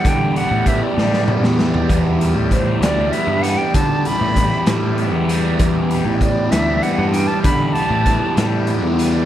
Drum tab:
HH |x-x-x-------|x-x-x-x-x-x-|x-x-x-x-x-x-|x-x-x-x-x-x-|
SD |------oo-oo-|------o-----|------o-----|------o-----|
T2 |--------o---|------------|------------|------------|
FT |-----------o|------------|------------|------------|
BD |o---o-------|o---o-------|o---o-------|o---o-------|

HH |x-x-x-x-x-x-|
SD |------o-----|
T2 |------------|
FT |------------|
BD |o---o-------|